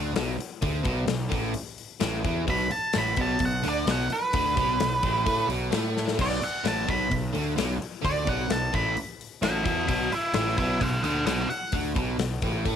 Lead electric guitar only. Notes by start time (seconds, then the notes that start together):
2.50 B5
2.72 A5
2.98 B5
3.22 A5
3.45 F#5
3.69 D5
3.91 F#5
4.13 B4
6.21 D5
6.43 F#5
6.68 A5
6.90 B5
8.05 D5
8.29 F#5
8.52 A5
8.75 B5
9.43 D#5 B5
9.65 D#5 B5
9.89 D#5 B5
10.13 B4 G#5
10.34 B4 G#5
10.58 B4 G#5
10.81 D#5 F#5
11.04 D#5 F#5
11.26 D#5 F#5
11.50 F#5